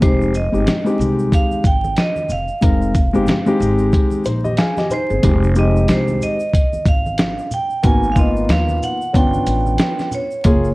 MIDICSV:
0, 0, Header, 1, 6, 480
1, 0, Start_track
1, 0, Key_signature, -4, "minor"
1, 0, Tempo, 652174
1, 13, Time_signature, 4, 2, 24, 8
1, 7907, End_track
2, 0, Start_track
2, 0, Title_t, "Vibraphone"
2, 0, Program_c, 0, 11
2, 24, Note_on_c, 0, 72, 85
2, 264, Note_on_c, 0, 75, 79
2, 265, Note_off_c, 0, 72, 0
2, 709, Note_off_c, 0, 75, 0
2, 989, Note_on_c, 0, 77, 100
2, 1227, Note_on_c, 0, 79, 102
2, 1228, Note_off_c, 0, 77, 0
2, 1444, Note_off_c, 0, 79, 0
2, 1466, Note_on_c, 0, 75, 90
2, 1706, Note_off_c, 0, 75, 0
2, 1708, Note_on_c, 0, 77, 85
2, 2631, Note_off_c, 0, 77, 0
2, 3631, Note_on_c, 0, 72, 92
2, 4072, Note_off_c, 0, 72, 0
2, 4113, Note_on_c, 0, 75, 85
2, 4350, Note_off_c, 0, 75, 0
2, 4352, Note_on_c, 0, 72, 84
2, 4588, Note_on_c, 0, 75, 97
2, 4589, Note_off_c, 0, 72, 0
2, 5031, Note_off_c, 0, 75, 0
2, 5067, Note_on_c, 0, 77, 85
2, 5511, Note_off_c, 0, 77, 0
2, 5549, Note_on_c, 0, 79, 100
2, 5764, Note_off_c, 0, 79, 0
2, 5783, Note_on_c, 0, 80, 102
2, 5978, Note_on_c, 0, 77, 69
2, 5981, Note_off_c, 0, 80, 0
2, 6017, Note_off_c, 0, 77, 0
2, 6029, Note_on_c, 0, 75, 86
2, 6245, Note_off_c, 0, 75, 0
2, 6261, Note_on_c, 0, 77, 103
2, 6503, Note_on_c, 0, 78, 101
2, 6504, Note_off_c, 0, 77, 0
2, 6722, Note_off_c, 0, 78, 0
2, 6743, Note_on_c, 0, 79, 103
2, 7429, Note_off_c, 0, 79, 0
2, 7470, Note_on_c, 0, 73, 86
2, 7907, Note_off_c, 0, 73, 0
2, 7907, End_track
3, 0, Start_track
3, 0, Title_t, "Grand piano"
3, 0, Program_c, 1, 0
3, 3, Note_on_c, 1, 56, 67
3, 8, Note_on_c, 1, 60, 62
3, 14, Note_on_c, 1, 63, 65
3, 18, Note_on_c, 1, 67, 80
3, 228, Note_off_c, 1, 56, 0
3, 231, Note_off_c, 1, 60, 0
3, 234, Note_off_c, 1, 63, 0
3, 236, Note_off_c, 1, 67, 0
3, 385, Note_on_c, 1, 56, 66
3, 389, Note_on_c, 1, 60, 61
3, 395, Note_on_c, 1, 63, 62
3, 400, Note_on_c, 1, 67, 72
3, 517, Note_off_c, 1, 56, 0
3, 519, Note_off_c, 1, 60, 0
3, 522, Note_off_c, 1, 63, 0
3, 524, Note_off_c, 1, 67, 0
3, 622, Note_on_c, 1, 56, 75
3, 630, Note_on_c, 1, 60, 69
3, 634, Note_on_c, 1, 63, 68
3, 640, Note_on_c, 1, 67, 79
3, 1187, Note_off_c, 1, 56, 0
3, 1191, Note_off_c, 1, 60, 0
3, 1193, Note_off_c, 1, 63, 0
3, 1196, Note_off_c, 1, 67, 0
3, 1924, Note_on_c, 1, 56, 65
3, 1929, Note_on_c, 1, 60, 59
3, 1934, Note_on_c, 1, 63, 63
3, 1938, Note_on_c, 1, 70, 70
3, 2149, Note_off_c, 1, 56, 0
3, 2152, Note_off_c, 1, 60, 0
3, 2154, Note_off_c, 1, 63, 0
3, 2156, Note_off_c, 1, 70, 0
3, 2305, Note_on_c, 1, 56, 87
3, 2311, Note_on_c, 1, 60, 72
3, 2317, Note_on_c, 1, 63, 70
3, 2321, Note_on_c, 1, 67, 91
3, 2437, Note_off_c, 1, 56, 0
3, 2440, Note_off_c, 1, 60, 0
3, 2443, Note_off_c, 1, 63, 0
3, 2445, Note_off_c, 1, 67, 0
3, 2545, Note_on_c, 1, 56, 87
3, 2551, Note_on_c, 1, 60, 79
3, 2558, Note_on_c, 1, 63, 77
3, 2560, Note_on_c, 1, 67, 98
3, 3109, Note_off_c, 1, 56, 0
3, 3112, Note_off_c, 1, 60, 0
3, 3115, Note_off_c, 1, 63, 0
3, 3117, Note_off_c, 1, 67, 0
3, 3131, Note_on_c, 1, 72, 62
3, 3132, Note_on_c, 1, 63, 53
3, 3266, Note_off_c, 1, 72, 0
3, 3267, Note_off_c, 1, 63, 0
3, 3270, Note_on_c, 1, 75, 71
3, 3273, Note_on_c, 1, 67, 56
3, 3366, Note_off_c, 1, 75, 0
3, 3368, Note_off_c, 1, 67, 0
3, 3369, Note_on_c, 1, 77, 68
3, 3372, Note_on_c, 1, 80, 66
3, 3375, Note_on_c, 1, 68, 52
3, 3505, Note_off_c, 1, 77, 0
3, 3508, Note_off_c, 1, 68, 0
3, 3516, Note_on_c, 1, 75, 67
3, 3521, Note_on_c, 1, 67, 60
3, 3609, Note_off_c, 1, 75, 0
3, 3612, Note_off_c, 1, 67, 0
3, 3615, Note_on_c, 1, 72, 66
3, 3617, Note_on_c, 1, 63, 55
3, 3748, Note_off_c, 1, 72, 0
3, 3750, Note_off_c, 1, 63, 0
3, 3753, Note_on_c, 1, 68, 56
3, 3755, Note_on_c, 1, 60, 43
3, 3823, Note_off_c, 1, 80, 0
3, 3838, Note_off_c, 1, 60, 0
3, 3846, Note_on_c, 1, 56, 78
3, 3849, Note_on_c, 1, 60, 57
3, 3855, Note_on_c, 1, 63, 64
3, 3859, Note_on_c, 1, 67, 70
3, 3982, Note_off_c, 1, 68, 0
3, 4010, Note_off_c, 1, 56, 0
3, 4012, Note_off_c, 1, 60, 0
3, 4015, Note_off_c, 1, 63, 0
3, 4017, Note_off_c, 1, 67, 0
3, 4085, Note_on_c, 1, 56, 64
3, 4089, Note_on_c, 1, 60, 57
3, 4095, Note_on_c, 1, 63, 63
3, 4100, Note_on_c, 1, 67, 80
3, 4682, Note_off_c, 1, 56, 0
3, 4684, Note_off_c, 1, 60, 0
3, 4687, Note_off_c, 1, 63, 0
3, 4690, Note_off_c, 1, 67, 0
3, 5762, Note_on_c, 1, 58, 72
3, 5767, Note_on_c, 1, 59, 67
3, 5770, Note_on_c, 1, 63, 66
3, 5777, Note_on_c, 1, 66, 70
3, 5929, Note_off_c, 1, 58, 0
3, 5931, Note_off_c, 1, 59, 0
3, 5933, Note_off_c, 1, 63, 0
3, 5936, Note_off_c, 1, 66, 0
3, 6001, Note_on_c, 1, 58, 63
3, 6004, Note_on_c, 1, 59, 60
3, 6009, Note_on_c, 1, 63, 63
3, 6018, Note_on_c, 1, 65, 73
3, 6600, Note_off_c, 1, 58, 0
3, 6602, Note_off_c, 1, 59, 0
3, 6604, Note_off_c, 1, 63, 0
3, 6609, Note_off_c, 1, 65, 0
3, 6721, Note_on_c, 1, 59, 68
3, 6725, Note_on_c, 1, 61, 71
3, 6730, Note_on_c, 1, 62, 64
3, 6737, Note_on_c, 1, 65, 71
3, 7504, Note_off_c, 1, 59, 0
3, 7506, Note_off_c, 1, 61, 0
3, 7508, Note_off_c, 1, 62, 0
3, 7512, Note_off_c, 1, 65, 0
3, 7687, Note_on_c, 1, 58, 68
3, 7693, Note_on_c, 1, 61, 66
3, 7697, Note_on_c, 1, 65, 72
3, 7702, Note_on_c, 1, 68, 84
3, 7851, Note_off_c, 1, 58, 0
3, 7854, Note_off_c, 1, 61, 0
3, 7856, Note_off_c, 1, 65, 0
3, 7859, Note_off_c, 1, 68, 0
3, 7907, End_track
4, 0, Start_track
4, 0, Title_t, "Upright bass"
4, 0, Program_c, 2, 32
4, 15, Note_on_c, 2, 29, 84
4, 366, Note_off_c, 2, 29, 0
4, 393, Note_on_c, 2, 31, 78
4, 484, Note_off_c, 2, 31, 0
4, 731, Note_on_c, 2, 36, 88
4, 951, Note_off_c, 2, 36, 0
4, 1208, Note_on_c, 2, 32, 80
4, 1429, Note_off_c, 2, 32, 0
4, 1691, Note_on_c, 2, 29, 79
4, 1821, Note_off_c, 2, 29, 0
4, 1936, Note_on_c, 2, 29, 100
4, 2286, Note_off_c, 2, 29, 0
4, 2314, Note_on_c, 2, 31, 82
4, 2404, Note_off_c, 2, 31, 0
4, 2650, Note_on_c, 2, 32, 97
4, 2870, Note_off_c, 2, 32, 0
4, 3132, Note_on_c, 2, 34, 86
4, 3352, Note_off_c, 2, 34, 0
4, 3755, Note_on_c, 2, 31, 86
4, 3845, Note_off_c, 2, 31, 0
4, 3854, Note_on_c, 2, 29, 97
4, 4304, Note_off_c, 2, 29, 0
4, 4330, Note_on_c, 2, 36, 93
4, 4551, Note_off_c, 2, 36, 0
4, 5045, Note_on_c, 2, 32, 77
4, 5401, Note_off_c, 2, 32, 0
4, 5771, Note_on_c, 2, 32, 105
4, 6222, Note_off_c, 2, 32, 0
4, 6249, Note_on_c, 2, 39, 102
4, 6470, Note_off_c, 2, 39, 0
4, 6729, Note_on_c, 2, 31, 112
4, 6860, Note_off_c, 2, 31, 0
4, 6968, Note_on_c, 2, 33, 81
4, 7189, Note_off_c, 2, 33, 0
4, 7692, Note_on_c, 2, 30, 108
4, 7907, Note_off_c, 2, 30, 0
4, 7907, End_track
5, 0, Start_track
5, 0, Title_t, "Muted upright bass strokes"
5, 4950, Note_on_c, 9, 29, 44
5, 5024, Note_off_c, 9, 29, 0
5, 6875, Note_on_c, 9, 29, 44
5, 6949, Note_off_c, 9, 29, 0
5, 7907, End_track
6, 0, Start_track
6, 0, Title_t, "Drums"
6, 12, Note_on_c, 9, 82, 58
6, 14, Note_on_c, 9, 42, 94
6, 15, Note_on_c, 9, 36, 108
6, 86, Note_off_c, 9, 82, 0
6, 88, Note_off_c, 9, 42, 0
6, 89, Note_off_c, 9, 36, 0
6, 158, Note_on_c, 9, 82, 40
6, 232, Note_off_c, 9, 82, 0
6, 253, Note_on_c, 9, 82, 46
6, 326, Note_off_c, 9, 82, 0
6, 402, Note_on_c, 9, 82, 46
6, 475, Note_off_c, 9, 82, 0
6, 494, Note_on_c, 9, 42, 68
6, 494, Note_on_c, 9, 64, 62
6, 494, Note_on_c, 9, 82, 64
6, 500, Note_on_c, 9, 38, 97
6, 567, Note_off_c, 9, 42, 0
6, 568, Note_off_c, 9, 64, 0
6, 568, Note_off_c, 9, 82, 0
6, 574, Note_off_c, 9, 38, 0
6, 636, Note_on_c, 9, 82, 44
6, 709, Note_off_c, 9, 82, 0
6, 736, Note_on_c, 9, 63, 39
6, 736, Note_on_c, 9, 64, 60
6, 736, Note_on_c, 9, 82, 37
6, 744, Note_off_c, 9, 82, 0
6, 744, Note_on_c, 9, 82, 47
6, 810, Note_off_c, 9, 63, 0
6, 810, Note_off_c, 9, 64, 0
6, 818, Note_off_c, 9, 82, 0
6, 876, Note_on_c, 9, 82, 55
6, 949, Note_off_c, 9, 82, 0
6, 973, Note_on_c, 9, 36, 90
6, 977, Note_on_c, 9, 82, 69
6, 982, Note_on_c, 9, 42, 78
6, 1047, Note_off_c, 9, 36, 0
6, 1050, Note_off_c, 9, 82, 0
6, 1055, Note_off_c, 9, 42, 0
6, 1115, Note_on_c, 9, 63, 46
6, 1115, Note_on_c, 9, 82, 43
6, 1189, Note_off_c, 9, 63, 0
6, 1189, Note_off_c, 9, 82, 0
6, 1206, Note_on_c, 9, 82, 48
6, 1208, Note_on_c, 9, 36, 85
6, 1214, Note_off_c, 9, 82, 0
6, 1214, Note_on_c, 9, 42, 47
6, 1214, Note_on_c, 9, 82, 48
6, 1282, Note_off_c, 9, 36, 0
6, 1287, Note_off_c, 9, 42, 0
6, 1287, Note_off_c, 9, 82, 0
6, 1356, Note_on_c, 9, 63, 63
6, 1356, Note_on_c, 9, 82, 42
6, 1430, Note_off_c, 9, 63, 0
6, 1430, Note_off_c, 9, 82, 0
6, 1447, Note_on_c, 9, 42, 63
6, 1447, Note_on_c, 9, 82, 63
6, 1457, Note_on_c, 9, 38, 100
6, 1521, Note_off_c, 9, 42, 0
6, 1521, Note_off_c, 9, 82, 0
6, 1531, Note_off_c, 9, 38, 0
6, 1591, Note_on_c, 9, 63, 58
6, 1591, Note_on_c, 9, 82, 39
6, 1665, Note_off_c, 9, 63, 0
6, 1665, Note_off_c, 9, 82, 0
6, 1684, Note_on_c, 9, 64, 59
6, 1684, Note_on_c, 9, 82, 41
6, 1693, Note_off_c, 9, 82, 0
6, 1693, Note_on_c, 9, 82, 51
6, 1757, Note_off_c, 9, 64, 0
6, 1766, Note_off_c, 9, 82, 0
6, 1827, Note_on_c, 9, 82, 41
6, 1900, Note_off_c, 9, 82, 0
6, 1926, Note_on_c, 9, 82, 55
6, 1932, Note_on_c, 9, 42, 112
6, 1934, Note_on_c, 9, 36, 91
6, 2000, Note_off_c, 9, 82, 0
6, 2006, Note_off_c, 9, 42, 0
6, 2008, Note_off_c, 9, 36, 0
6, 2075, Note_on_c, 9, 82, 42
6, 2148, Note_off_c, 9, 82, 0
6, 2169, Note_on_c, 9, 36, 85
6, 2169, Note_on_c, 9, 42, 40
6, 2169, Note_on_c, 9, 82, 43
6, 2170, Note_off_c, 9, 82, 0
6, 2170, Note_on_c, 9, 82, 45
6, 2242, Note_off_c, 9, 42, 0
6, 2243, Note_off_c, 9, 36, 0
6, 2243, Note_off_c, 9, 82, 0
6, 2313, Note_on_c, 9, 82, 46
6, 2387, Note_off_c, 9, 82, 0
6, 2401, Note_on_c, 9, 64, 57
6, 2401, Note_on_c, 9, 82, 61
6, 2413, Note_on_c, 9, 42, 59
6, 2420, Note_on_c, 9, 38, 95
6, 2474, Note_off_c, 9, 64, 0
6, 2474, Note_off_c, 9, 82, 0
6, 2487, Note_off_c, 9, 42, 0
6, 2494, Note_off_c, 9, 38, 0
6, 2547, Note_on_c, 9, 63, 61
6, 2547, Note_on_c, 9, 82, 43
6, 2621, Note_off_c, 9, 63, 0
6, 2621, Note_off_c, 9, 82, 0
6, 2647, Note_on_c, 9, 63, 38
6, 2647, Note_on_c, 9, 64, 56
6, 2647, Note_on_c, 9, 82, 37
6, 2662, Note_off_c, 9, 82, 0
6, 2662, Note_on_c, 9, 82, 51
6, 2720, Note_off_c, 9, 63, 0
6, 2720, Note_off_c, 9, 64, 0
6, 2735, Note_off_c, 9, 82, 0
6, 2784, Note_on_c, 9, 82, 56
6, 2857, Note_off_c, 9, 82, 0
6, 2887, Note_on_c, 9, 82, 62
6, 2892, Note_on_c, 9, 36, 86
6, 2899, Note_on_c, 9, 42, 72
6, 2961, Note_off_c, 9, 82, 0
6, 2965, Note_off_c, 9, 36, 0
6, 2973, Note_off_c, 9, 42, 0
6, 3025, Note_on_c, 9, 63, 49
6, 3025, Note_on_c, 9, 82, 50
6, 3099, Note_off_c, 9, 63, 0
6, 3099, Note_off_c, 9, 82, 0
6, 3121, Note_on_c, 9, 82, 50
6, 3132, Note_off_c, 9, 82, 0
6, 3132, Note_on_c, 9, 42, 46
6, 3132, Note_on_c, 9, 82, 48
6, 3206, Note_off_c, 9, 42, 0
6, 3206, Note_off_c, 9, 82, 0
6, 3273, Note_on_c, 9, 63, 57
6, 3273, Note_on_c, 9, 82, 39
6, 3347, Note_off_c, 9, 63, 0
6, 3347, Note_off_c, 9, 82, 0
6, 3364, Note_on_c, 9, 42, 67
6, 3369, Note_on_c, 9, 82, 59
6, 3374, Note_on_c, 9, 38, 96
6, 3438, Note_off_c, 9, 42, 0
6, 3442, Note_off_c, 9, 82, 0
6, 3447, Note_off_c, 9, 38, 0
6, 3512, Note_on_c, 9, 63, 61
6, 3512, Note_on_c, 9, 82, 46
6, 3517, Note_on_c, 9, 38, 29
6, 3585, Note_off_c, 9, 63, 0
6, 3585, Note_off_c, 9, 82, 0
6, 3591, Note_off_c, 9, 38, 0
6, 3606, Note_on_c, 9, 64, 57
6, 3606, Note_on_c, 9, 82, 43
6, 3610, Note_off_c, 9, 82, 0
6, 3610, Note_on_c, 9, 82, 50
6, 3679, Note_off_c, 9, 64, 0
6, 3684, Note_off_c, 9, 82, 0
6, 3753, Note_on_c, 9, 82, 42
6, 3827, Note_off_c, 9, 82, 0
6, 3849, Note_on_c, 9, 42, 102
6, 3853, Note_on_c, 9, 36, 94
6, 3853, Note_on_c, 9, 82, 63
6, 3923, Note_off_c, 9, 42, 0
6, 3926, Note_off_c, 9, 36, 0
6, 3926, Note_off_c, 9, 82, 0
6, 3999, Note_on_c, 9, 82, 45
6, 4073, Note_off_c, 9, 82, 0
6, 4088, Note_on_c, 9, 82, 47
6, 4095, Note_off_c, 9, 82, 0
6, 4095, Note_on_c, 9, 82, 38
6, 4168, Note_off_c, 9, 82, 0
6, 4242, Note_on_c, 9, 82, 46
6, 4316, Note_off_c, 9, 82, 0
6, 4330, Note_on_c, 9, 42, 62
6, 4331, Note_on_c, 9, 82, 61
6, 4336, Note_on_c, 9, 38, 99
6, 4403, Note_off_c, 9, 42, 0
6, 4404, Note_off_c, 9, 82, 0
6, 4410, Note_off_c, 9, 38, 0
6, 4475, Note_on_c, 9, 63, 57
6, 4475, Note_on_c, 9, 82, 47
6, 4548, Note_off_c, 9, 63, 0
6, 4548, Note_off_c, 9, 82, 0
6, 4574, Note_on_c, 9, 63, 37
6, 4574, Note_on_c, 9, 64, 57
6, 4574, Note_on_c, 9, 82, 36
6, 4581, Note_off_c, 9, 82, 0
6, 4581, Note_on_c, 9, 82, 56
6, 4647, Note_off_c, 9, 63, 0
6, 4647, Note_off_c, 9, 64, 0
6, 4655, Note_off_c, 9, 82, 0
6, 4709, Note_on_c, 9, 82, 54
6, 4783, Note_off_c, 9, 82, 0
6, 4811, Note_on_c, 9, 36, 87
6, 4817, Note_on_c, 9, 82, 63
6, 4819, Note_on_c, 9, 42, 75
6, 4884, Note_off_c, 9, 36, 0
6, 4890, Note_off_c, 9, 82, 0
6, 4893, Note_off_c, 9, 42, 0
6, 4954, Note_on_c, 9, 63, 43
6, 4954, Note_on_c, 9, 82, 46
6, 5028, Note_off_c, 9, 63, 0
6, 5028, Note_off_c, 9, 82, 0
6, 5045, Note_on_c, 9, 36, 90
6, 5046, Note_on_c, 9, 82, 47
6, 5050, Note_off_c, 9, 82, 0
6, 5050, Note_on_c, 9, 42, 50
6, 5050, Note_on_c, 9, 82, 44
6, 5119, Note_off_c, 9, 36, 0
6, 5123, Note_off_c, 9, 42, 0
6, 5123, Note_off_c, 9, 82, 0
6, 5197, Note_on_c, 9, 63, 58
6, 5197, Note_on_c, 9, 82, 37
6, 5270, Note_off_c, 9, 63, 0
6, 5270, Note_off_c, 9, 82, 0
6, 5283, Note_on_c, 9, 42, 72
6, 5291, Note_on_c, 9, 82, 72
6, 5293, Note_on_c, 9, 38, 107
6, 5357, Note_off_c, 9, 42, 0
6, 5364, Note_off_c, 9, 82, 0
6, 5366, Note_off_c, 9, 38, 0
6, 5435, Note_on_c, 9, 82, 44
6, 5509, Note_off_c, 9, 82, 0
6, 5528, Note_on_c, 9, 64, 61
6, 5528, Note_on_c, 9, 82, 41
6, 5529, Note_off_c, 9, 82, 0
6, 5529, Note_on_c, 9, 82, 52
6, 5601, Note_off_c, 9, 64, 0
6, 5603, Note_off_c, 9, 82, 0
6, 5668, Note_on_c, 9, 82, 42
6, 5742, Note_off_c, 9, 82, 0
6, 5766, Note_on_c, 9, 82, 58
6, 5768, Note_on_c, 9, 42, 103
6, 5770, Note_on_c, 9, 36, 108
6, 5840, Note_off_c, 9, 82, 0
6, 5841, Note_off_c, 9, 42, 0
6, 5844, Note_off_c, 9, 36, 0
6, 5912, Note_on_c, 9, 82, 40
6, 5986, Note_off_c, 9, 82, 0
6, 6006, Note_on_c, 9, 36, 80
6, 6007, Note_on_c, 9, 82, 45
6, 6008, Note_off_c, 9, 82, 0
6, 6008, Note_on_c, 9, 82, 45
6, 6079, Note_off_c, 9, 36, 0
6, 6082, Note_off_c, 9, 82, 0
6, 6157, Note_on_c, 9, 82, 48
6, 6230, Note_off_c, 9, 82, 0
6, 6249, Note_on_c, 9, 42, 59
6, 6250, Note_on_c, 9, 82, 58
6, 6256, Note_on_c, 9, 38, 112
6, 6323, Note_off_c, 9, 42, 0
6, 6323, Note_off_c, 9, 82, 0
6, 6330, Note_off_c, 9, 38, 0
6, 6393, Note_on_c, 9, 63, 61
6, 6393, Note_on_c, 9, 82, 45
6, 6466, Note_off_c, 9, 63, 0
6, 6466, Note_off_c, 9, 82, 0
6, 6495, Note_on_c, 9, 63, 41
6, 6495, Note_on_c, 9, 64, 56
6, 6495, Note_on_c, 9, 82, 39
6, 6496, Note_off_c, 9, 82, 0
6, 6496, Note_on_c, 9, 82, 51
6, 6569, Note_off_c, 9, 63, 0
6, 6569, Note_off_c, 9, 64, 0
6, 6570, Note_off_c, 9, 82, 0
6, 6633, Note_on_c, 9, 82, 54
6, 6707, Note_off_c, 9, 82, 0
6, 6729, Note_on_c, 9, 36, 89
6, 6732, Note_on_c, 9, 82, 60
6, 6737, Note_on_c, 9, 42, 70
6, 6802, Note_off_c, 9, 36, 0
6, 6806, Note_off_c, 9, 82, 0
6, 6811, Note_off_c, 9, 42, 0
6, 6872, Note_on_c, 9, 63, 49
6, 6872, Note_on_c, 9, 82, 50
6, 6945, Note_off_c, 9, 63, 0
6, 6945, Note_off_c, 9, 82, 0
6, 6966, Note_on_c, 9, 82, 47
6, 6969, Note_off_c, 9, 82, 0
6, 6969, Note_on_c, 9, 42, 50
6, 6969, Note_on_c, 9, 82, 46
6, 7042, Note_off_c, 9, 42, 0
6, 7042, Note_off_c, 9, 82, 0
6, 7114, Note_on_c, 9, 63, 65
6, 7114, Note_on_c, 9, 82, 43
6, 7188, Note_off_c, 9, 63, 0
6, 7188, Note_off_c, 9, 82, 0
6, 7202, Note_on_c, 9, 42, 62
6, 7209, Note_on_c, 9, 82, 64
6, 7212, Note_on_c, 9, 38, 109
6, 7276, Note_off_c, 9, 42, 0
6, 7283, Note_off_c, 9, 82, 0
6, 7286, Note_off_c, 9, 38, 0
6, 7354, Note_on_c, 9, 82, 45
6, 7358, Note_on_c, 9, 38, 32
6, 7428, Note_off_c, 9, 82, 0
6, 7432, Note_off_c, 9, 38, 0
6, 7446, Note_on_c, 9, 64, 57
6, 7446, Note_on_c, 9, 82, 37
6, 7451, Note_off_c, 9, 82, 0
6, 7451, Note_on_c, 9, 82, 50
6, 7519, Note_off_c, 9, 64, 0
6, 7525, Note_off_c, 9, 82, 0
6, 7590, Note_on_c, 9, 82, 46
6, 7663, Note_off_c, 9, 82, 0
6, 7686, Note_on_c, 9, 42, 111
6, 7690, Note_on_c, 9, 82, 56
6, 7692, Note_on_c, 9, 36, 114
6, 7760, Note_off_c, 9, 42, 0
6, 7763, Note_off_c, 9, 82, 0
6, 7766, Note_off_c, 9, 36, 0
6, 7836, Note_on_c, 9, 82, 42
6, 7907, Note_off_c, 9, 82, 0
6, 7907, End_track
0, 0, End_of_file